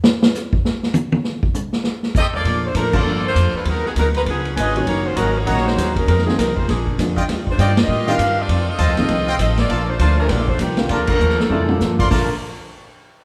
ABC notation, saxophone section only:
X:1
M:4/4
L:1/8
Q:"Swing" 1/4=199
K:Bb
V:1 name="Saxophone section"
z8 | z6 [CGAe] [B,FAd]- | [B,FAd] [A,DFc] [F,A,DB] [B,FAd]2 [B,FAc]2 [_A,DF_c] | [_G,_CEB] [G,CE_A] [G,CEB] [_A,E_G_c] [F,C_DA]2 [CFAe] [CFA_d] |
[B,E_G_d] [_A,_DFc] [_G,DEB] [B,EGd]2 [B,EGc]2 [G,DEB] | [G,CEB] [F,CE_A] [G,CEB] [_A,EFc] [F,B,DA]2 z2 | z [A,DFc] [B,FGd] [B,FGe]2 [DGBf]2 [CFAd]- | [CFAd] [CFAe]4- [CFAe] [CFAe] [B,FAd]- |
[B,FAd] [A,DFc] [A,DFc] [F,A,DB] [B,FAd] [A,DFc] [F,B,DG]2 | [F,A,DB] [F,DAB]2 [F,B,DA]4 z | [F,A,DB] z6 z |]